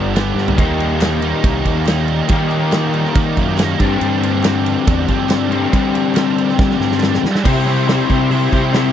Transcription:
Already playing: G1 G2 D3 G3 B3 D4 G4
0.13 G2 D3 G3 B3 D4, snare, ride
0.35 G2, snare
0.48 floor tom
0.56 D#2 D#3 G3 A#3 D#4, kick, ride
0.61 G4
0.80 ride
1.02 snare, clap, ride
1.21 D#3 G3 A#3 D#4, ride
1.44 C2, kick, ride
1.65 D#2, kick, ride
1.86 D#3 G3 A#3 D#4, snare, clap, ride
2.08 ride
2.29 D#3 G3 A#3 D#4 G4, kick, ride
2.51 ride
2.72 snare, clap, ride
2.93 D#3 G3 A#3 D#4, ride
3.05 snare
3.15 D#3, kick, ride
3.37 F#2, kick, ride
3.57 D#3 G3 A#3 D#4, snare, clap, ride
3.79 G2 D3 G3 C4 D4, kick, ride
3.83 G4
4.01 G2, ride
4.23 ride
4.43 G2 D3 G3 C4 D4, snare, clap, ride
4.66 ride
4.87 E2, kick, ride
5.08 G2 D3 G3 C4 D4, kick, ride
5.29 snare, clap, ride
5.51 G2 D3 G3 C4 D4 G4, ride
5.73 G3, kick, ride
5.95 ride
6.15 G2 D3 G3 C4 D4, snare, clap, ride
6.38 ride
6.49 snare
6.59 G3, kick, snare
6.71 snare
6.79 G2 D3 G3 C4 D4, snare
6.92 snare
7.00 snare, clap
7.14 snare
7.23 G3, snare
7.35 snare
7.44 C3 G3 C4 E4 G4 C5 E5 C6, kick, crash
7.65 C3 G3 C4 E4 G4 C5
7.87 C3 G3 C4 E4 G4 C5, snare, open hi-hat
8.09 C3 G3 C4 E4 G4 C5, kick
8.29 C3 G3 C4 E4 G4 C5, open hi-hat
8.51 C3 G3 C4 E4 G4 C5, kick
8.72 C3 G3 C4 E4 G4 C5, snare, open hi-hat

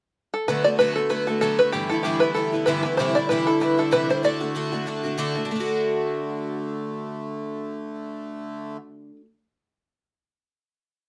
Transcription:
0.34 A4
0.48 D3 F#3 A3 B3 F#4 B4
0.64 A3 B3 F#4 D5
0.79 D3 F#3 A3 B3 F#4 B4
0.96 A3 B3 F#4 A4
1.09 F#3 A3 B3 F#4 B4
1.27 A3 B3 F#4 A4
1.41 D3 F#3 A3 B3 F#4 A4
1.59 A3 B3 F#4 B4
1.72 G2 D3 E3 G3 B3 E4 G4
1.89 E3 G3 B3 E4 A4
2.03 G2 D3 E3 G3 B3 E4 G4
2.20 E3 G3 B3 E4 B4
2.34 E3 G3 B3 E4 A4
2.52 E3 G3 B3 E4
2.66 G2 D3 E3 G3 B3 E4 B4
2.83 E3 G3 B3 E4 B4
2.97 C3 E3 G3 D4 E4 C5
3.15 G3 D4 E4 D5
3.29 C3 E3 G3 D4 E4 B4
3.46 G3 D4 E4 A4
3.60 E3 G3 D4 E4 B4
3.77 G3 D4 E4 A4
3.91 C3 E3 G3 D4 E4 B4
4.09 G3 D4 E4 C5
4.23 D3 A3 D4 F#4 D5
4.40 A3 D4 F#4
4.55 D3 A3 D4 F#4
4.72 A3 D4 F#4
4.86 D3 A3 D4 F#4
5.03 A3 D4 F#4
5.17 D3 A3 D4 F#4
5.35 A3 D4 F#4
5.45 D3
5.50 D3 A3
5.55 D4
5.60 F#4

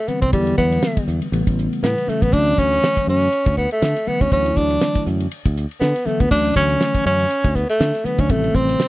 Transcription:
0.08 D3 E3 G3 B3 C4, muted fingered electric bass stroke, hi-hat pedal
0.21 C2 C4, kick, ride
0.32 E2 D3 E3 F#3 G3 B3, kick, ride
0.47 ride
0.58 E2 B3, kick, hi-hat pedal
0.72 ride
0.82 snare, ride
0.97 kick, ride
1.08 E2, hi-hat pedal
1.22 ride
1.32 A1 C#3 E3 G3 A3 B3, ride
1.47 A1, kick, ride
1.58 hi-hat pedal
1.73 ride
1.83 A2 B3, snare, ride
1.98 ride
2.07 C#3 E3 G3 A3 C#4, muted fingered electric bass stroke, hi-hat pedal
2.22 A1 B3, kick, ride
2.32 D2 D3 E3 F#3 A3 C#4 D4, kick, ride
2.47 ride
2.58 D2 C#4, kick, hi-hat pedal
2.73 ride
2.84 snare, ride
2.97 kick, ride
3.07 F#2 C#4, hi-hat pedal
3.22 ride
3.33 ride
3.46 D2, kick, ride
3.57 B3, kick, hi-hat pedal
3.71 A3, ride
3.82 D3, snare, ride
3.96 snare, ride
4.07 D3 E3 F#3 A3 B3, muted fingered electric bass stroke, hi-hat pedal
4.21 D2 C#4, kick, ride
4.31 D2 D3 E3 F#3 A3 C#4 E4, kick, ride
4.46 ride
4.56 D2 D4, kick, hi-hat pedal
4.70 ride
4.81 snare, ride
4.95 kick, ride
5.06 F#2, hi-hat pedal
5.20 ride
5.31 ride
5.45 D2, kick, ride
5.57 hi-hat pedal
5.71 ride
5.80 D3 B3, snare, ride
5.96 snare, ride
6.05 D3 E3 F#3 A3 B3, muted fingered electric bass stroke, hi-hat pedal
6.20 D2 B3, kick, ride
6.31 D2 D3 E3 F#3 A3 C#4 D4, kick, crash
6.45 ride
6.56 D2 C#4, kick, hi-hat pedal
6.70 ride
6.80 snare, ride
6.95 kick, ride
7.06 F#2 C#4, snare, hi-hat pedal
7.20 ride
7.31 ride
7.44 D2, kick, ride
7.55 B3, kick, hi-hat pedal
7.69 A3, ride
7.80 D3, snare, ride
7.95 snare, ride
8.04 D3 E3 F#3 A3 B3 D4, muted fingered electric bass stroke, hi-hat pedal
8.19 D2 C#4, kick, ride
8.29 A1 C3 D#3 G3 A3 C4, kick, ride
8.44 ride
8.54 A1 C4, kick, hi-hat pedal
8.69 snare, ride
8.80 snare, ride

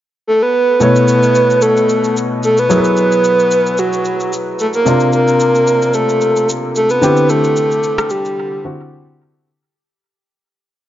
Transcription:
0.27 A4
0.42 B4
0.80 B2 A3 E4 B4 C#5, shaker
0.96 shaker
1.08 shaker
1.23 shaker
1.35 shaker
1.50 shaker
1.62 A4, shaker
1.77 shaker
1.89 shaker
2.04 shaker
2.17 shaker
2.43 A4, shaker
2.58 B4, shaker
2.69 F#3 E4 G#4 A#4, shaker
2.78 B4
2.84 shaker
2.97 B4, shaker
3.12 shaker
3.24 shaker
3.39 shaker
3.51 shaker
3.66 shaker
3.78 F#4, shaker
3.93 shaker
4.05 shaker
4.20 shaker
4.33 shaker
4.59 A4, shaker
4.73 A#4, shaker
4.85 C3 A#3 D4 F4, shaker
5.00 shaker
5.13 A#4, shaker
5.28 shaker
5.40 shaker
5.55 shaker
5.67 shaker
5.82 shaker
5.94 A4, shaker
6.09 shaker
6.21 shaker
6.36 shaker
6.49 shaker
6.75 A4, shaker
6.90 B4, shaker
7.02 D3 C4 E4 G4, shaker
7.17 shaker
7.29 A4, shaker
7.44 shaker
7.56 shaker
7.71 shaker
7.83 shaker
7.98 cross-stick, shaker
8.10 G4, shaker
8.25 shaker
8.64 D3 C4 E4 F#4

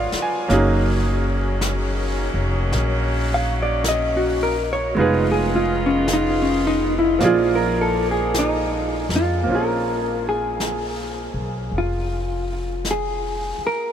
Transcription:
Already playing: D3 F3 B3 C#4 D4 F4 G#4 A#4 B4 C#5 D5 F5
0.12 muted upright bass stroke, snare
0.22 G#5
0.48 F#1 D#3 F#3 A#3 C#4 D#4, brush sweep, snare
0.53 G#4
1.61 brush sweep, snare, hi-hat pedal
2.34 F1
2.72 A#1, brush sweep, snare
3.34 F5
3.63 D5
3.84 brush sweep, snare, hi-hat pedal
3.88 D#5
4.17 F#4
4.43 A#4
4.73 C#5
4.95 F1 D#3 G#3 B3 D#4 F4, brush sweep
5.00 G#4 B4
5.32 G#4
5.56 F4
5.86 C#4
6.08 brush sweep, snare, hi-hat pedal
6.13 D#4
6.42 C#4
6.67 D#4
6.98 E4
7.19 A#1 F3 A#3 F4 D5, brush sweep, snare
7.24 F4 G#4
7.55 A#4
7.81 A4
8.11 G#4
8.34 brush sweep, snare, hi-hat pedal
8.39 D#4
9.09 F2, snare
9.16 F4
9.43 A#1 A#3 C4, brush sweep
9.49 C#4 F4
9.55 G#4 A#4
10.29 G#4
10.60 brush sweep, snare, hi-hat pedal
11.34 B1
11.72 F1, brush sweep
11.78 F4
12.85 brush sweep, snare, hi-hat pedal
12.91 G#4
13.58 muted upright bass stroke
13.67 A#4

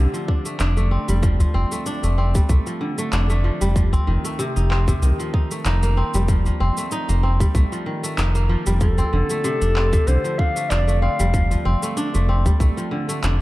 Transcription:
Already playing: D3 A3 C4 D4
0.14 F3, shaker
0.28 D4, kick
0.45 A3, shaker
0.60 F1 D4, clap, shaker
0.77 A3, shaker
0.91 C4
1.08 F1 G3, shaker
1.23 F3, kick, shaker
1.40 F3, udu, shaker
1.54 F1 C4
1.72 A3, shaker
1.86 D4, shaker
2.03 F1 A3, shaker
2.18 C4
2.35 G3, kick, udu, shaker
2.49 C2 A3, kick, shaker
2.67 F3, shaker
2.81 D3
2.98 A3, shaker
3.12 F1 D4, clap, shaker
3.30 A3, shaker
3.44 F3
3.61 F1 G3, shaker
3.76 F3, kick, shaker
3.93 C4, udu, shaker
4.07 F1 D#3
4.25 A3, shaker
4.39 C3, shaker
4.56 F1 D#4, shaker
4.71 C4, clap
4.88 C3, kick, udu, shaker
5.02 C2 D#3, shaker
5.19 F3, shaker
5.34 D#4, kick
5.51 A3, shaker
5.65 F1 D#4, clap, shaker
5.83 A#3, shaker
5.97 C4
6.14 F1 G3, shaker
6.28 F3, kick, shaker
6.46 F3, udu, shaker
6.60 F1 C4
6.77 A3, shaker
6.92 D#4, shaker
7.09 F1 A#3, shaker
7.23 C4
7.40 G3, kick, udu, shaker
7.55 C2 A3, kick, shaker
7.72 F3, shaker
7.86 D#3
8.03 A3, shaker
8.18 F1 D#4, clap, shaker
8.35 A#3, shaker
8.49 F3
8.66 F1 G3, shaker
8.81 F3 A4, kick, shaker
8.98 C4, udu, shaker
9.13 F1 D3
9.30 A3, shaker
9.44 C3, shaker
9.61 F1 D4, shaker
9.76 C4, clap
9.93 C3, kick, udu, shaker
10.07 C2 D3 C5, shaker
10.24 F3, shaker
10.39 D4 F5, kick
10.56 A3, shaker
10.70 F1 D4 D5, clap, shaker
10.88 A3, shaker
11.02 C4 F5
11.19 F1 G3, shaker
11.34 F3, kick, shaker
11.51 F3, udu, shaker
11.65 F1 C4
11.83 A3, shaker
11.97 D4, shaker
12.15 F1 A3, shaker
12.29 C4
12.45 G3, kick, udu, shaker
12.60 C2 A3, kick, shaker
12.77 F3, shaker
12.91 D3
13.09 A3, shaker
13.23 F1 D4, clap, shaker

